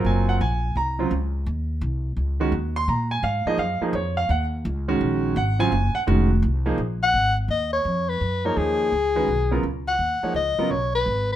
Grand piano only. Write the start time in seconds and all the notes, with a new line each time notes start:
Already playing: F#3 C4 F4 A#4
0.06 G#5
0.29 F#5
0.41 G#5
0.77 A#5
0.99 C#3 F#3 C4 F4
2.40 D#3 G#3 C#4 F#4
2.76 C6
2.89 A#5
3.11 G#5
3.24 F5
3.47 F3 A#3 D#4 G#4 D#5
3.59 F5
3.82 F3 A#3 D#4 G#4 A#4
3.95 C#5
4.17 F5
4.30 F#5
4.88 D#3 G#3 C#4 F#4
5.37 F#5
5.59 C#3 F#3 C4 F4 G#5
5.95 F#5
6.07 D#3 G#3 C#4 F#4
6.66 F3 A#3 D#4 G#4
8.45 F3 A#3 D#4 G#4 C#5
9.15 D#3 G#3 C#4 F#4 B4
9.51 C#3 F#3 B3 F4 A#4
10.23 F3 A#3 D#4 G#4 C#5
10.59 C#3 F#3 B3 F4 A#4